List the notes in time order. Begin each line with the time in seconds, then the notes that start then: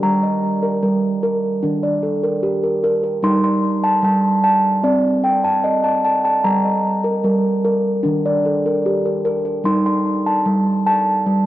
Already playing: G4 A#4
0.03 G3 A#5
0.23 D#5
0.63 A#4
0.83 G3 A#4
1.23 A#4
1.63 D#3 D4
1.83 D5
2.03 A4
2.23 A#4
2.43 G4
2.63 A#4
2.84 A#4
3.03 A#4
3.23 G3 D#4 C6
3.44 C6
3.84 A5
4.02 G3 A5
4.44 A5
4.83 C4 D5
5.24 G5
5.44 A5
5.64 D#5
5.84 A5
6.05 A5
6.25 A5
6.44 G3 A#5
6.65 D#5
7.04 A#4
7.24 G3 A#4
7.65 A#4
8.03 D#3 D4
8.26 D5
8.45 A4
8.66 A#4
8.86 G4
9.05 A#4
9.25 A#4
9.45 A#4
9.64 G3 D#4 C6
9.86 C6
10.26 A5
10.46 G3
10.87 A5
11.26 G3